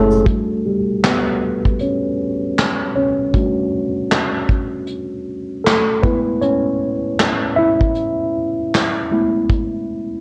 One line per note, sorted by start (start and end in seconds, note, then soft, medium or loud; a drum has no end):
0.00 0.20 F#1 medium
0.00 0.28 G#3 medium
0.00 0.27 A3 medium
0.00 0.26 C#4 medium
0.00 0.27 E4 medium
0.00 0.28 G#4 medium
0.00 0.67 A4 medium
0.00 0.29 C#5 medium
0.11 shaker soft
0.26 0.66 G3 medium
0.26 3.31 A3 soft
0.26 kick loud
0.26 closed hi-hat medium
0.66 1.02 G3 medium
0.66 1.01 G4 medium
1.04 1.77 B3 medium
1.04 1.83 B4 medium
1.04 snare loud
1.04 clap medium
1.65 kick medium
1.79 2.93 C#4 medium
1.79 2.92 C#5 medium
1.79 closed hi-hat medium
2.58 snare loud
2.58 clap medium
2.58 closed hi-hat medium
2.96 3.69 C#4 medium
2.96 3.69 C#5 medium
3.34 3.89 G3 medium
3.34 3.89 A3 soft
3.34 3.89 D4 soft
3.34 3.89 F#4 medium
3.34 kick medium
3.34 closed hi-hat medium
4.12 snare loud
4.12 clap medium
4.49 kick medium
4.87 closed hi-hat medium
5.64 6.02 A3 medium
5.64 6.04 A4 medium
5.64 snare medium
5.64 clap medium
5.64 closed hi-hat medium
6.03 9.07 G#3 soft
6.03 9.07 A3 soft
6.03 6.22 B3 medium
6.03 7.57 E4 medium
6.03 6.20 B4 medium
6.03 kick loud
6.42 7.16 C#4 medium
6.42 7.15 C#5 medium
6.42 closed hi-hat medium
7.19 snare loud
7.19 clap medium
7.19 closed hi-hat medium
7.56 9.11 E4 medium
7.56 10.21 E5 loud
7.81 kick medium
7.95 closed hi-hat medium
8.74 snare loud
8.74 clap medium
8.74 closed hi-hat medium
9.11 10.21 G#3 medium
9.11 10.21 A3 soft
9.11 10.21 B3 soft
9.11 10.21 E4 medium
9.49 kick loud
9.49 closed hi-hat medium